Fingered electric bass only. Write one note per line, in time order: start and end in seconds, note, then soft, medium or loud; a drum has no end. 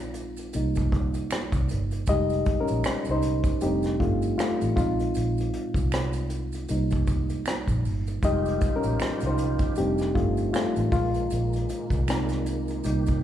0.00 0.51 A#1 medium
0.55 1.21 C2 medium
1.54 1.67 C2 medium
1.72 2.04 G1 medium
2.08 2.41 F1 loud
2.71 2.84 A#1 medium
3.09 3.41 C2 medium
3.63 3.96 F1 medium
4.01 4.34 G1 medium
4.62 4.76 A1 medium
4.78 5.11 A#1 medium
5.17 5.49 A#1 medium
5.76 6.65 C2 medium
6.71 7.36 C2 medium
7.68 7.83 A#1 medium
7.85 8.18 G1 medium
8.23 8.56 F1 loud
8.84 8.98 A#1 medium
9.02 muted fingered electric bass stroke soft
9.23 9.56 C2 medium
9.78 10.11 F1 medium
10.16 10.49 G1 medium
10.77 10.91 A1 medium
10.93 11.26 A#1 medium
11.32 11.65 A#1 medium
11.92 12.81 C2 medium
12.86 13.23 C2 loud